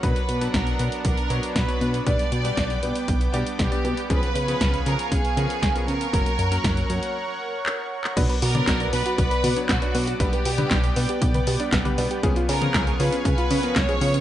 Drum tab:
CC |----------------|----------------|----------------|----------------|
HH |xxxxxxxxxxxxxxxx|xxxxxxxxxxxxxxxx|xxxxxxxxxxxxxxxx|xxxxxxxx--------|
CP |----------------|----------------|----------------|------------x--x|
SD |----o-------o---|----o-------o---|----o-------o---|----o-----------|
T1 |----------------|----------------|----------------|----------------|
BD |o---o---o---o---|o---o---o---o---|o---o---o---o---|o---o-----------|

CC |x---------------|----------------|----------------|
HH |xxoxxxoxxxoxxxox|xxoxxxoxxxoxxxox|xxoxxxoxxxoxxxox|
CP |----x-------x---|----x-------x---|----x-------x---|
SD |----o-------o---|----o-------o---|----o-------o---|
T1 |---o------o-----|---o-----o---o--|---o------o-----|
BD |o---o---o---o---|o---o---o---o---|o---o---o---o---|